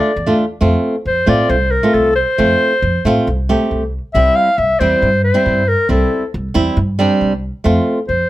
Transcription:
0.00 0.11 A3 medium
0.00 0.11 D4 medium
0.00 0.11 F4 medium
0.00 0.38 D5 medium
0.16 0.30 E2 medium
0.26 0.44 A3 medium
0.26 0.44 D4 medium
0.26 0.44 F4 medium
0.61 0.74 F2 medium
0.61 0.94 A3 medium
0.61 0.94 C4 medium
0.61 0.94 F4 medium
1.06 1.19 F2 medium
1.06 1.31 C5 medium
1.26 1.41 A2 medium
1.26 1.55 A3 medium
1.26 1.55 C4 medium
1.26 1.55 F4 medium
1.26 1.52 D5 medium
1.49 1.76 C2 medium
1.49 1.73 C5 medium
1.71 1.96 A#4 medium
1.83 2.11 A3 medium
1.83 2.11 C4 medium
1.83 2.11 F4 medium
1.94 2.21 C2 medium
1.94 2.15 A4 medium
2.16 3.44 C5 loud
2.38 2.52 F2 medium
2.38 2.71 A3 medium
2.38 2.71 C4 medium
2.38 2.71 F4 medium
2.82 2.96 F2 medium
3.05 3.18 A2 medium
3.05 3.27 A3 medium
3.05 3.27 C4 medium
3.05 3.27 F4 loud
3.27 3.53 C2 medium
3.49 3.82 A3 medium
3.49 3.82 C4 medium
3.49 3.82 G4 medium
3.71 3.97 C2 medium
4.14 4.28 C2 medium
4.14 4.48 G3 medium
4.14 4.48 C4 medium
4.14 4.48 E4 medium
4.14 4.37 E5 loud
4.36 4.60 F5 loud
4.58 4.71 C2 medium
4.58 4.81 E5 medium
4.80 4.93 E2 medium
4.80 5.08 G3 medium
4.80 5.08 C4 medium
4.80 5.08 E4 medium
4.80 5.23 C5 loud
5.02 5.29 G2 medium
5.24 5.70 C5 medium
5.34 5.62 G3 medium
5.34 5.62 C4 medium
5.34 5.62 E4 medium
5.46 5.72 G2 medium
5.69 5.90 A#4 medium
5.89 6.02 C2 medium
5.89 6.22 G3 medium
5.89 6.23 C4 medium
5.89 6.23 E4 medium
5.89 6.31 A4 medium
6.34 6.47 C2 medium
6.54 6.68 E2 medium
6.54 6.77 G3 medium
6.54 6.77 C4 medium
6.54 6.77 E4 medium
6.77 7.03 G2 medium
6.99 7.32 G3 medium
6.99 7.32 C4 medium
6.99 7.32 D4 medium
7.21 7.47 C2 medium
7.64 7.78 F2 medium
7.64 7.97 A3 medium
7.64 7.97 C4 medium
7.64 7.98 F4 medium
8.08 8.22 F2 medium
8.08 8.29 C5 medium

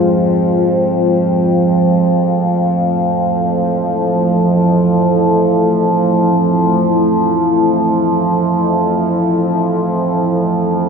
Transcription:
0.00 10.89 F2 medium
0.00 10.89 F3 medium
0.00 1.47 G#3 medium
0.00 1.46 F4 medium
0.00 10.89 C5 medium
1.46 10.46 A3 medium
2.55 10.45 E4 medium
10.46 10.89 G#3 medium

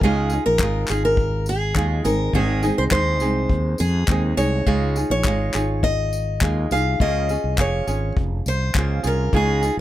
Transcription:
0.01 0.38 C#2 loud
0.01 0.32 C#3 medium
0.01 0.32 G#3 medium
0.01 0.32 D#4 medium
0.01 0.32 F4 medium
0.01 0.45 G#4 medium
0.01 0.31 G#4 medium
0.01 kick loud
0.30 0.60 D#4 soft
0.30 0.61 F4 medium
0.30 0.60 G#4 soft
0.30 tambourine medium
0.46 0.58 A#1 medium
0.46 0.90 A#4 medium
0.59 0.83 G#1 medium
0.59 0.89 G#3 medium
0.59 0.90 D#4 medium
0.59 0.90 F4 medium
0.59 0.89 G#4 medium
0.59 kick medium
0.59 clap loud
0.88 1.72 G#1 medium
0.88 1.76 D#4 soft
0.88 1.75 F4 soft
0.88 1.77 G#4 medium
0.88 1.03 G#4 medium
0.88 clap medium
0.88 tambourine medium
1.05 1.49 A#4 medium
1.17 kick loud
1.46 2.05 G#4 medium
1.46 tambourine medium
1.75 2.00 D#2 loud
1.75 2.05 G#3 medium
1.75 2.05 D#4 medium
1.75 2.05 F4 medium
1.75 2.03 G#4 medium
1.75 kick loud
1.75 clap loud
2.04 2.29 G#1 loud
2.04 2.34 G#3 soft
2.04 2.34 C4 soft
2.04 2.33 D#4 soft
2.04 2.34 G#4 medium
2.04 2.35 A#4 medium
2.04 tambourine medium
2.33 2.70 G#1 loud
2.33 2.63 G#2 medium
2.33 2.63 D#3 medium
2.33 2.64 G#3 medium
2.33 2.63 C4 medium
2.33 2.63 D#4 medium
2.33 2.75 G#4 medium
2.33 2.62 G#4 medium
2.33 kick loud
2.63 2.90 G#3 soft
2.63 2.90 C4 soft
2.63 2.92 D#4 soft
2.63 2.92 G#4 medium
2.63 tambourine medium
2.78 2.90 C2 medium
2.78 2.83 C5 medium
2.91 3.22 D#2 medium
2.91 3.21 G#3 medium
2.91 3.21 C4 medium
2.91 3.21 D#4 medium
2.91 3.20 G#4 medium
2.91 3.80 C5 medium
2.91 kick loud
2.91 clap loud
3.20 3.45 C2 medium
3.20 4.08 G#3 soft
3.20 4.08 C4 soft
3.20 4.10 D#4 soft
3.20 4.11 G#4 medium
3.20 tambourine medium
3.49 3.74 D#2 medium
3.49 kick loud
3.78 4.04 F2 medium
3.78 4.37 G#4 medium
3.78 tambourine medium
4.08 4.32 D#2 medium
4.08 4.38 G#3 medium
4.08 4.37 C4 medium
4.08 4.36 D#4 medium
4.08 4.36 G#4 medium
4.08 kick loud
4.08 clap loud
4.37 4.61 C2 medium
4.37 4.65 G#3 soft
4.37 4.67 C4 soft
4.37 4.66 D#4 soft
4.37 4.67 G#4 soft
4.37 5.10 C#5 medium
4.37 tambourine medium
4.66 5.03 C#2 medium
4.66 4.96 C#3 medium
4.66 4.96 G#3 medium
4.66 4.96 D#4 medium
4.66 4.96 F4 medium
4.66 4.96 G#4 medium
4.66 kick loud
4.96 5.24 D#4 soft
4.96 5.25 F4 soft
4.96 5.25 G#4 medium
4.96 tambourine medium
5.10 5.22 A#1 medium
5.10 5.83 C#5 loud
5.24 5.49 G#1 medium
5.24 5.54 G#3 medium
5.24 5.54 D#4 medium
5.24 5.55 F4 medium
5.24 5.53 G#4 medium
5.24 kick loud
5.24 clap loud
5.54 6.38 G#1 medium
5.54 6.41 D#4 soft
5.54 6.42 F4 medium
5.54 6.43 G#4 medium
5.54 clap medium
5.54 tambourine medium
5.83 6.72 D#5 medium
5.83 kick loud
6.13 tambourine medium
6.41 6.65 D#2 medium
6.41 6.71 G#3 medium
6.41 6.71 D#4 medium
6.41 6.71 F4 medium
6.41 6.71 G#4 medium
6.41 kick loud
6.41 clap loud
6.71 6.95 C2 medium
6.71 7.01 D#4 soft
6.71 6.99 F4 soft
6.71 7.00 G#4 medium
6.71 7.01 F5 medium
6.71 tambourine medium
7.00 7.36 C#2 loud
7.00 7.29 C#3 medium
7.00 7.29 A#3 medium
7.00 7.29 C#4 medium
7.00 7.29 F4 medium
7.00 7.29 G#4 medium
7.00 7.60 D#5 loud
7.00 kick loud
7.29 7.57 C#4 soft
7.29 7.57 F4 soft
7.29 7.58 G#4 medium
7.29 tambourine medium
7.44 7.56 C2 medium
7.58 7.82 F1 medium
7.58 7.87 A#3 medium
7.58 7.87 C#4 medium
7.58 7.87 F4 medium
7.58 7.86 G#4 medium
7.58 8.13 C#5 medium
7.58 kick loud
7.58 clap loud
7.87 8.11 G#1 medium
7.87 8.76 C#4 soft
7.87 8.76 F4 medium
7.87 8.77 G#4 medium
7.87 tambourine medium
8.16 8.40 F1 medium
8.16 kick loud
8.46 8.70 C2 medium
8.46 9.07 C5 loud
8.46 tambourine medium
8.75 8.99 C#2 medium
8.75 9.04 A#3 medium
8.75 9.05 C#4 medium
8.75 9.03 F4 medium
8.75 9.02 G#4 medium
8.75 kick loud
8.75 clap loud
9.03 9.28 C2 medium
9.03 9.34 C#4 soft
9.03 9.33 F4 medium
9.03 9.33 G#4 soft
9.03 9.33 A#4 medium
9.03 tambourine medium
9.33 9.69 C#2 loud
9.33 9.62 C#3 medium
9.33 9.62 G#3 medium
9.33 9.63 D#4 medium
9.33 9.62 F4 medium
9.33 9.60 G#4 medium
9.33 9.75 G#4 medium
9.33 kick loud
9.61 9.80 D#4 soft
9.61 9.80 F4 medium
9.61 9.80 G#4 medium
9.61 tambourine medium
9.77 9.80 A#1 medium

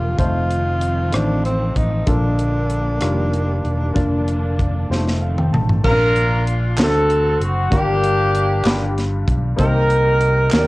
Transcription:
0.00 0.16 E1 medium
0.00 0.20 A#2 soft
0.00 0.16 D3 medium
0.00 5.80 F3 medium
0.00 0.16 G3 medium
0.00 0.21 G3 medium
0.00 0.17 A#3 medium
0.00 0.21 D4 medium
0.00 0.18 F4 medium
0.00 0.21 A#4 medium
0.17 1.09 F1 medium
0.17 2.05 D#3 medium
0.17 0.82 A3 medium
0.17 2.06 C4 medium
0.17 0.83 D#4 medium
0.17 0.83 F4 medium
0.17 1.16 F4 medium
0.17 0.83 C5 medium
0.17 kick medium
0.17 closed hi-hat medium
0.50 closed hi-hat soft
0.81 closed hi-hat medium
1.12 1.72 A1 medium
1.12 1.77 D#3 soft
1.12 1.77 A3 medium
1.12 1.45 D4 medium
1.12 1.77 F4 soft
1.12 1.78 C5 medium
1.12 cross-stick medium
1.12 closed hi-hat medium
1.45 1.78 C4 medium
1.45 cross-stick soft
1.45 closed hi-hat soft
1.76 2.05 A1 medium
1.76 2.09 D#4 medium
1.76 kick medium
1.76 closed hi-hat soft
2.07 2.98 A#1 medium
2.07 2.98 A#2 soft
2.07 3.01 D3 medium
2.07 3.94 A#3 medium
2.07 2.71 D4 medium
2.07 5.22 D4 medium
2.07 2.72 F4 medium
2.07 2.71 A4 medium
2.07 2.72 A#4 medium
2.07 kick medium
2.07 closed hi-hat medium
2.39 closed hi-hat soft
2.70 closed hi-hat medium
3.00 3.61 F1 medium
3.00 3.65 D#3 medium
3.00 3.96 D#3 medium
3.00 3.65 G3 medium
3.00 3.95 G3 medium
3.00 3.66 F4 medium
3.00 3.66 A#4 medium
3.00 cross-stick medium
3.00 closed hi-hat medium
3.34 closed hi-hat soft
3.65 3.94 E1 medium
3.65 closed hi-hat soft
3.94 4.86 F1 medium
3.94 4.59 A#3 medium
3.94 4.59 D4 medium
3.94 4.59 F4 medium
3.94 4.60 D5 medium
3.94 kick medium
3.94 closed hi-hat medium
3.98 4.90 D3 medium
3.98 4.90 A#3 medium
3.98 4.90 D4 medium
4.28 closed hi-hat soft
4.59 kick medium
4.59 closed hi-hat medium
4.89 5.49 F1 medium
4.89 5.54 D#3 medium
4.89 5.83 D#3 medium
4.89 4.96 G3 soft
4.89 5.83 A3 medium
4.89 5.84 C4 medium
4.89 5.54 F4 medium
4.89 5.55 C5 medium
4.89 snare soft
4.96 5.57 A3 medium
5.07 snare soft
5.20 5.36 F5 medium
5.38 5.52 G5 medium
5.38 mid tom medium
5.53 5.82 A1 medium
5.53 5.82 A5 medium
5.53 mid tom medium
5.69 floor tom medium
5.84 6.74 A#1 medium
5.84 6.74 A#2 soft
5.84 6.48 A#3 medium
5.84 5.91 C4 medium
5.84 6.74 D4 medium
5.84 6.48 F4 medium
5.84 6.75 F4 medium
5.84 6.43 A#4 loud
5.84 6.48 A#4 medium
5.84 kick loud
5.84 crash medium
5.91 6.51 D4 medium
6.16 closed hi-hat medium
6.47 closed hi-hat medium
6.77 7.36 D2 medium
6.77 7.68 D3 medium
6.77 7.41 A3 medium
6.77 7.69 C4 medium
6.77 7.42 D4 medium
6.77 7.42 F#4 soft
6.77 7.43 F#4 medium
6.77 7.42 C5 medium
6.77 snare loud
6.77 clap medium
6.77 closed hi-hat medium
6.83 7.39 A4 medium
7.10 closed hi-hat soft
7.40 7.69 F#1 medium
7.40 7.74 F#4 medium
7.40 closed hi-hat medium
7.70 8.61 G1 loud
7.70 8.61 G2 medium
7.70 8.34 G3 medium
7.70 8.35 D4 medium
7.70 8.35 F4 medium
7.70 8.36 A#4 medium
7.70 kick loud
7.70 closed hi-hat medium
7.75 8.94 A#3 medium
7.75 8.94 D4 medium
7.75 8.98 G4 medium
8.04 closed hi-hat medium
8.35 closed hi-hat medium
8.65 9.24 G1 medium
8.65 9.55 G2 medium
8.65 9.29 G3 medium
8.65 9.29 D4 medium
8.65 9.29 F4 medium
8.65 9.29 B5 medium
8.65 snare loud
8.65 clap medium
8.65 closed hi-hat medium
8.98 snare soft
8.98 closed hi-hat soft
9.28 9.56 B1 medium
9.28 kick medium
9.28 closed hi-hat medium
9.57 10.48 C2 loud
9.57 10.47 C3 medium
9.57 10.21 A#3 medium
9.57 10.21 D#4 medium
9.57 10.49 D#4 medium
9.57 10.22 G4 medium
9.57 10.49 G4 medium
9.57 10.49 A#4 medium
9.57 10.22 C5 medium
9.57 kick loud
9.57 closed hi-hat medium
9.90 closed hi-hat soft
10.21 closed hi-hat medium
10.51 10.67 D#2 medium
10.51 10.67 A#3 medium
10.51 10.67 D#4 medium
10.51 10.67 G4 soft
10.51 10.67 G4 medium
10.51 10.67 A#4 medium
10.51 10.59 C#5 medium
10.51 snare loud
10.51 clap medium
10.51 closed hi-hat medium
10.60 10.67 D5 medium

